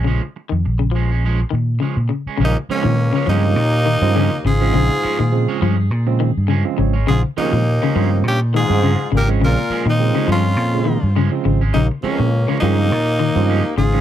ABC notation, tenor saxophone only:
X:1
M:4/4
L:1/16
Q:"Swing 16ths" 1/4=103
K:Bbdor
V:1 name="Tenor saxophone"
z16 | E2 D4 E8 A2- | A6 z8 z2 | A2 E6 G2 A4 B2 |
B3 E3 F6 z4 | E2 D4 E8 A2 |]